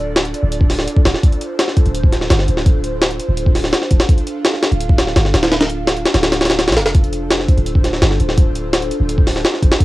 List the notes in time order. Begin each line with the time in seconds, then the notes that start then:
Already playing: D1 D4 F4 A4 D5
0.16 snare, closed hi-hat
0.25 closed hi-hat
0.34 closed hi-hat
0.43 D1
0.52 closed hi-hat
0.61 kick
0.70 snare, open hi-hat
0.79 snare
0.88 closed hi-hat
0.97 kick
1.05 D1, snare, closed hi-hat
1.14 snare
1.23 C5, kick, closed hi-hat
1.32 closed hi-hat
1.41 closed hi-hat
1.59 snare, closed hi-hat
1.68 snare
1.77 kick, closed hi-hat
1.86 D1, closed hi-hat
1.95 closed hi-hat
2.04 kick
2.13 snare, closed hi-hat
2.21 snare
2.30 G1, snare, closed hi-hat
2.39 snare
2.48 D1, closed hi-hat
2.57 snare
2.66 kick, closed hi-hat
2.84 closed hi-hat
3.02 snare, closed hi-hat
3.11 closed hi-hat
3.20 closed hi-hat
3.29 D1
3.37 closed hi-hat
3.46 kick
3.55 snare, open hi-hat
3.64 snare
3.73 snare, closed hi-hat
3.82 snare
3.91 D1, kick, closed hi-hat
4.00 snare, closed hi-hat
4.09 F5, kick, closed hi-hat
4.18 closed hi-hat
4.27 closed hi-hat
4.45 snare, closed hi-hat
4.54 snare
4.63 snare, closed hi-hat
4.72 D1, closed hi-hat
4.80 closed hi-hat
4.89 kick
4.98 snare, closed hi-hat
5.07 snare
5.16 G1, snare, closed hi-hat
5.25 snare
5.34 D1, snare, closed hi-hat
5.43 snare, closed hi-hat
5.52 snare, closed hi-hat
5.61 snare, closed hi-hat
5.70 closed hi-hat
5.87 snare, closed hi-hat
5.97 closed hi-hat
6.05 snare, closed hi-hat
6.14 D1, snare, closed hi-hat
6.23 snare, closed hi-hat
6.32 snare, closed hi-hat
6.41 snare, closed hi-hat
6.45 snare, closed hi-hat
6.50 snare, closed hi-hat
6.59 snare, closed hi-hat
6.68 C2, snare, closed hi-hat
6.72 snare, closed hi-hat
6.77 F1, snare, closed hi-hat
6.86 snare, closed hi-hat
6.94 C5, kick, closed hi-hat
7.04 closed hi-hat
7.12 closed hi-hat
7.30 snare, closed hi-hat
7.39 snare
7.48 kick, closed hi-hat
7.57 D1, closed hi-hat
7.66 closed hi-hat
7.75 kick
7.84 snare, closed hi-hat
7.93 snare
8.02 G1, snare, closed hi-hat
8.11 snare
8.20 D1, closed hi-hat
8.29 snare
8.37 kick, closed hi-hat
8.55 closed hi-hat
8.73 snare, closed hi-hat
8.82 closed hi-hat
8.91 closed hi-hat
9.00 D1
9.09 closed hi-hat
9.18 kick
9.27 snare, open hi-hat
9.36 snare
9.45 snare, closed hi-hat
9.54 snare
9.63 D1, kick, closed hi-hat
9.72 snare, closed hi-hat
9.80 F5, kick, closed hi-hat